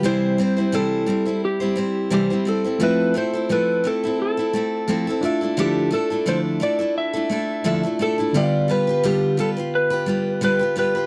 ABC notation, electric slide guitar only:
X:1
M:4/4
L:1/8
Q:"Swing 16ths" 1/4=87
K:C
V:1 name="Electric slide guitar"
c2 A2 G2 G A | B c B A A3 z | G A c d e3 A | d B G A B2 B B |]